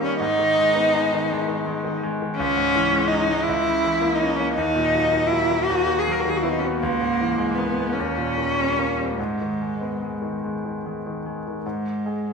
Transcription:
Already playing: G2 D#3 G3 A#3
0.02 G3 C#4
0.20 G#2 D#4
0.39 D#3
0.58 G#3
0.75 B3
0.94 G#3
1.12 D#3
1.32 G#3
1.48 D#3
1.66 G#3
1.84 D#3
2.03 G#3
2.22 D#3
2.36 C#4
2.40 C#2
2.57 G#2
2.76 E3
2.93 G#3
3.08 C#4 D#4
3.30 G#3
3.43 E4
3.49 C#2
3.67 C#3
3.85 E3
4.01 A#3
4.15 D#4
4.22 C#4
4.36 A#3 C#4
4.54 D#2 D#4
4.76 A#2
4.95 F#3
5.13 A#3
5.27 E4
5.32 F#3
5.51 A#3
5.64 F#4
5.70 D#2
5.87 D#3
5.99 G#4
6.07 F#3
6.12 A#4
6.20 F#4
6.25 D#3 G#4
6.37 F#4
6.42 B3 E4
6.50 D#4
6.59 C#4
6.64 F#4
6.68 B3
6.78 A#3
6.83 C#2
7.01 G#2
7.21 E3
7.38 G#3
7.55 A#3 B3
7.80 G#3
7.93 C#4
7.99 D#2
8.18 A#2
8.38 D#3
8.58 G3
8.79 A#3
8.99 G3
9.15 G#2 G#3
9.41 D#3
9.62 G#3
9.81 B3
10.02 G#3
10.22 D#3
10.44 G#3
10.66 D#3
10.86 G#3
11.06 D#3
11.26 G#3
11.48 D#3
11.64 G#2 G#3
12.06 G#4

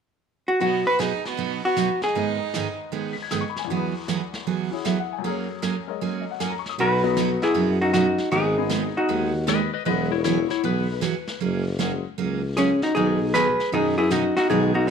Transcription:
0.48 F#4
0.60 B2 F#3 B3 D#4 F#4 B4, brush sweep
0.64 F#5
0.87 F#4 B4
0.99 B2 F#3 B3 D#4 F#4 G#4, snare, hi-hat pedal
1.25 B3 F#4, snare
1.37 B2 F#3 B3 D#4 F#4, brush sweep
1.65 B3 F#4
1.76 B2 F#3 B3 D#4 F#4, snare, hi-hat pedal
2.02 D#4 G#4, snare
2.13 G#2 D#3 G#3 B3 D#4 G#4 B4, brush sweep
2.18 D#5
2.54 G#2 D#3 G#3 B3 D#4 G#4, snare, hi-hat pedal
2.92 G#2 D#3 G#3 B3 D#4 G#4, brush sweep
3.13 B6
3.22 G#6
3.31 G#2 D#3 G#3 B3 D#4 G#4 D#6, snare, hi-hat pedal
3.41 C#6
3.50 B5
3.56 G#5, snare
3.65 E2 E3
3.69 E3 F#3 B3 F#4 G#4, brush sweep
3.76 B4
4.08 E3 F#3 B3 F#4 G#4, snare, hi-hat pedal
4.34 snare
4.47 E3 F#3 B3 F#4 G#4, brush sweep
4.71 E3 E4 F#4 G#4 C#5
4.85 E3 F#3 B3 F#4 G#4 E5, snare, hi-hat pedal
4.99 F#5
5.13 G#5
5.19 F#2 F#3
5.24 F#3 A#3 C#4 G#4 A#4, brush sweep
5.30 C#5
5.62 F#3 A#3 C#4 G#4, snare, hi-hat pedal
5.87 G#3 A#4 C#5 D#5
6.01 F#3 A#3 C#4 G#4, brush sweep
6.21 D#5
6.31 F#5
6.40 F#3 A#3 C#4 G#4 G#5, snare, hi-hat pedal
6.50 A#5
6.59 C#6
6.66 D#6, snare
6.78 B1 B2 F#3 B3 D#4 F#4 B4, brush sweep
7.03 F#3 B3 D#4 F#4
7.17 B2 F#3 B3 D#4 F#4, snare, hi-hat pedal
7.42 E4 G#4, snare
7.54 F#2 B2 F#3 B3 D#4 F#4, brush sweep
7.81 D#4 F#4
7.93 B2 F#3 B3 D#4 F#4, snare, hi-hat pedal
8.18 snare
8.31 G#1 D#3 G#3 B3 D#4 G#4, brush sweep
8.58 G#3 B3 D#4 G#4
8.69 D#3 G#3 B3 D#4 G#4, snare, hi-hat pedal
8.97 D#4 F#4
9.09 D#2 D#3 G#3 B3 D#4 G#4, brush sweep
9.47 D#3 G#3 B3 D#4 G#4 B4 D#5, snare, hi-hat pedal
9.74 B4 D#5
9.85 E1 E3 F#3 G#3 B3 E4 F#4 G#4 B4 D#5, brush sweep
10.11 E4 C#5
10.24 E3 F#3 B3 E4 F#4 G#4 C#5, snare, hi-hat pedal
10.50 E4 C#5, snare
10.63 B1 E3 F#3 B3 F#4 G#4 B4, brush sweep
11.01 E3 F#3 B3 F#4 G#4, snare, hi-hat pedal
11.28 snare
11.40 F#1 F#3 A#3 C#4 G#4, brush sweep
11.79 F#3 G#3 A#3 C#4 F#4 G#4, snare, hi-hat pedal
12.18 C#2 F#3 A#3 C#4 G#4, brush sweep
12.57 F#3 A#3 C#4 G#4, snare, hi-hat pedal
12.82 D#4 F#4, snare
12.95 B1 B2 D#3 F#3 B3 D#4 G#4, brush sweep
13.34 B2 D#3 F#3 B3 D#4 G#4 B4, snare, hi-hat pedal
13.60 snare
13.72 F#2 B2 D#3 F#3 B3 D#4 G#4, brush sweep
13.98 E4 G#4
14.10 B2 D#3 F#3 B3 D#4 F#4 G#4, snare, hi-hat pedal
14.37 D#4 F#4, snare
14.50 B1 B2 D#3 F#3 G#3 B3 D#4 F#4 G#4, brush sweep
14.75 D#4 F#4

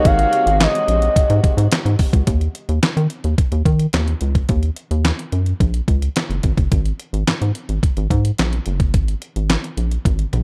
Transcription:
Already playing: C3 C#3 G#3 A#3 D#4 F#4 G#4 C#5
0.05 G#1 F5, kick, closed hi-hat
0.19 closed hi-hat
0.33 closed hi-hat
0.46 G#1, closed hi-hat
0.60 D#5, snare, clap, closed hi-hat
0.75 closed hi-hat
0.88 A#1, closed hi-hat
1.02 closed hi-hat
1.16 kick, closed hi-hat
1.30 G#2, closed hi-hat
1.44 kick, closed hi-hat
1.57 G#2, closed hi-hat
1.72 snare, clap, closed hi-hat
1.85 G#2, closed hi-hat
1.99 kick, open hi-hat
2.13 C#2, kick, closed hi-hat
2.27 D#2, kick, closed hi-hat
2.41 closed hi-hat
2.55 closed hi-hat
2.69 D#2, closed hi-hat
2.83 D#3, snare, clap, closed hi-hat
2.97 D#3, closed hi-hat
3.10 closed hi-hat
3.24 D#2, closed hi-hat
3.38 kick, closed hi-hat
3.52 D#2, closed hi-hat
3.65 D#3, kick, closed hi-hat
3.79 closed hi-hat
3.93 D#2, snare, clap, closed hi-hat
4.08 closed hi-hat
4.21 C#2, closed hi-hat
4.35 kick, closed hi-hat
4.49 D#2, kick, closed hi-hat
4.63 closed hi-hat
4.76 closed hi-hat
4.91 D#2, closed hi-hat
5.05 snare, clap, closed hi-hat
5.19 closed hi-hat
5.32 F#2, closed hi-hat
5.46 closed hi-hat
5.60 A#1, kick, closed hi-hat
5.74 closed hi-hat
5.88 C#2, kick, closed hi-hat
6.02 closed hi-hat
6.16 snare, clap, closed hi-hat
6.30 F#1, closed hi-hat
6.43 G#1, kick, closed hi-hat
6.57 F#1, kick, closed hi-hat
6.72 G#1, kick, closed hi-hat
6.86 closed hi-hat
7.00 closed hi-hat
7.13 G#1, closed hi-hat
7.27 G#2, snare, clap, closed hi-hat
7.42 G#2, closed hi-hat
7.55 closed hi-hat
7.69 G#1, closed hi-hat
7.83 kick, closed hi-hat
7.97 G#1, closed hi-hat
8.10 G#2, kick, closed hi-hat
8.25 closed hi-hat
8.38 A#1, snare, clap, closed hi-hat
8.53 closed hi-hat
8.66 F#1, closed hi-hat
8.80 kick, closed hi-hat
8.94 G#1, kick, closed hi-hat
9.08 closed hi-hat
9.22 closed hi-hat
9.36 G#1, closed hi-hat
9.50 snare, clap, closed hi-hat
9.64 closed hi-hat
9.77 A#1, closed hi-hat
9.91 closed hi-hat
10.05 G#1, kick, closed hi-hat, high tom
10.19 closed hi-hat
10.33 A#1, closed hi-hat, mid tom

